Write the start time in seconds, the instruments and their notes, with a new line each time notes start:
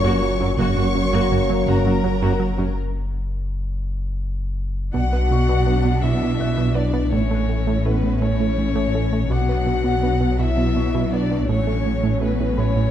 Already playing: sub bass F#1, trombone section F#2 F#3, french horn section A#2 C#4, violin section C#5 C#6, felt piano C#5 C#6
0.04 cello section F#2, analog synth bass F#2, viola section A#3 F#4
0.22 analog synth bass F#3
0.40 cello section F#2, analog synth bass F#2, viola section F#3 C#4
0.57 double bass section F#1, sub bass F#1, cello section F#2, trombone section F#2 F#3, analog synth bass F#2, viola section A#3 F#4, french horn section A#3 C#4, violin section C#5 C#6
0.76 cello section F#2, analog synth bass F#2, viola section A#3 F#4
0.95 analog synth bass F#2
1.13 cello section F#2, analog synth bass F#2, viola section A#3 F#4
1.30 double bass section F#1, cello section F#2, analog synth bass F#2, viola section A#3 F#4
1.49 cello section F#2, viola section F#3 C#4, analog synth bass F#3
1.66 double bass section F#1, cello section F#2, analog synth bass F#2, viola section A#3 F#4, violin section A#4 A#5
1.85 cello section F#2, analog synth bass F#3, viola section A#3 F#4
2.03 double bass section F#1, cello section F#2, viola section F#3 C#4, analog synth bass F#3
2.21 cello section F#2, analog synth bass F#2, viola section A#3 F#4
2.40 analog synth bass F#3
2.58 cello section F#2, analog synth bass F#2, viola section F#3 C#4
4.93 double bass section B1, sub bass B1, analog synth bass B2, cello section B2, viola section D4, violin section D4 F#5, french horn section F#4, violin F#5
5.13 analog synth bass B3
5.31 analog synth bass B2, felt piano C#6
5.49 analog synth bass B2
5.66 trombone section F#3 D4, analog synth bass B3
5.85 analog synth bass B2
6.02 analog synth bass B2, french horn section E4, violin E5, violin section E5
6.23 analog synth bass B2
6.40 analog synth bass B2, felt piano F#6
6.58 analog synth bass B2
6.74 trombone section F#3 D4, analog synth bass B3, french horn section D4, violin D5, violin section D5
6.93 analog synth bass B3
7.11 double bass section A1, sub bass A1, analog synth bass A2, cello section A2, viola section A3 C#4, french horn section C#4, violin section E4 C#5, violin C#5
7.31 analog synth bass A3
7.49 analog synth bass A2
7.67 analog synth bass A2
7.85 trombone section E3 C#4, analog synth bass A3, french horn section B3, violin section B4, violin B4
8.03 analog synth bass A2
8.22 analog synth bass A2, french horn section C#4, violin C#5, violin section C#5
8.40 analog synth bass A2
8.58 analog synth bass A2
8.76 analog synth bass A2
8.93 trombone section E3 C#4, analog synth bass A3
9.13 analog synth bass A3
9.30 double bass section B1, sub bass B1, analog synth bass B2, cello section B2, viola section F#3 B3, violin section D4 F#5, french horn section F#4, violin F#5, felt piano D6
9.49 analog synth bass B3
9.67 analog synth bass B2
9.84 analog synth bass B2
10.03 trombone section F#3 D4, analog synth bass B3
10.21 analog synth bass B2
10.39 analog synth bass B2, french horn section E4, violin E5, violin section E5
10.57 analog synth bass B2
10.76 analog synth bass B2, felt piano C#6
10.95 analog synth bass B2
11.11 trombone section F#3 D4, analog synth bass B3, french horn section D4, violin D5, violin section D5
11.31 analog synth bass B3
11.48 sub bass A1, double bass section A1, cello section A2, analog synth bass A2, french horn section C#4, viola section C#4, violin section C#4 C#5, violin C#5
11.67 analog synth bass A3
11.86 analog synth bass A2
12.03 analog synth bass A2
12.20 trombone section F#3 C#4, analog synth bass A3, french horn section B3, violin B4, violin section B4
12.40 analog synth bass A2
12.57 analog synth bass A2, french horn section C#4, felt piano B4 B5, violin section C#5, violin C#5
12.76 analog synth bass A2